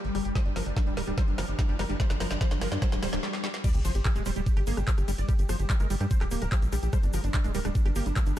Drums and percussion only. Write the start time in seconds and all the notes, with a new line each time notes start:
0.05 closed hi-hat
0.15 cross-stick, open hi-hat
0.25 closed hi-hat
0.35 kick, snare, closed hi-hat
0.46 closed hi-hat
0.56 snare, open hi-hat
0.66 closed hi-hat
0.77 kick, snare, closed hi-hat
0.87 closed hi-hat
0.97 snare, open hi-hat
1.07 closed hi-hat
1.18 kick, snare, closed hi-hat
1.28 closed hi-hat
1.38 snare, open hi-hat
1.48 closed hi-hat
1.59 kick, snare, closed hi-hat
1.69 closed hi-hat
1.79 snare, open hi-hat
1.90 closed hi-hat
2.00 kick, snare, closed hi-hat
2.10 snare, closed hi-hat
2.20 snare, open hi-hat
2.31 snare, closed hi-hat
2.41 kick, snare, closed hi-hat
2.51 snare, closed hi-hat
2.61 snare, open hi-hat
2.72 snare, closed hi-hat
2.82 kick, snare, closed hi-hat
2.92 snare, closed hi-hat
3.03 snare, open hi-hat
3.13 snare, closed hi-hat
3.23 snare
3.33 snare
3.44 snare
3.54 snare
3.64 kick, closed hi-hat, crash, ride, shaker
3.74 closed hi-hat, shaker
3.85 cross-stick, open hi-hat, ride, shaker
3.95 closed hi-hat, shaker
4.05 kick, cross-stick, clap, closed hi-hat, ride, shaker
4.16 closed hi-hat, shaker
4.26 cross-stick, open hi-hat, ride, shaker
4.36 closed hi-hat, shaker
4.46 kick, closed hi-hat, ride, shaker
4.57 cross-stick, closed hi-hat
4.67 open hi-hat, ride, shaker
4.77 cross-stick, closed hi-hat, shaker
4.88 kick, clap, closed hi-hat, ride, shaker
4.98 cross-stick, closed hi-hat, shaker
5.08 open hi-hat, ride, shaker
5.18 closed hi-hat, shaker
5.29 kick, cross-stick, closed hi-hat, ride, shaker
5.39 closed hi-hat, shaker
5.49 cross-stick, open hi-hat, ride, shaker
5.59 closed hi-hat, shaker
5.70 kick, cross-stick, clap, closed hi-hat, ride, shaker
5.80 closed hi-hat, shaker
5.90 open hi-hat, ride, shaker
6.00 cross-stick, closed hi-hat, shaker
6.11 kick, closed hi-hat, ride, shaker
6.21 cross-stick, clap, closed hi-hat
6.31 open hi-hat, ride, shaker
6.41 cross-stick, closed hi-hat, shaker
6.52 kick, clap, closed hi-hat, ride, shaker
6.62 closed hi-hat, shaker
6.72 cross-stick, open hi-hat, ride, shaker
6.83 closed hi-hat, shaker
6.93 kick, cross-stick, closed hi-hat, ride, shaker
7.03 closed hi-hat, shaker
7.13 cross-stick, open hi-hat, ride, shaker
7.24 closed hi-hat, shaker
7.33 kick, clap, closed hi-hat, ride, shaker
7.44 cross-stick, closed hi-hat, shaker
7.54 open hi-hat, ride, shaker
7.65 cross-stick, closed hi-hat, shaker
7.75 kick, closed hi-hat, ride, shaker
7.85 cross-stick, closed hi-hat
7.96 open hi-hat, ride, shaker
8.06 closed hi-hat, shaker
8.16 kick, cross-stick, clap, closed hi-hat, ride, shaker
8.26 closed hi-hat, shaker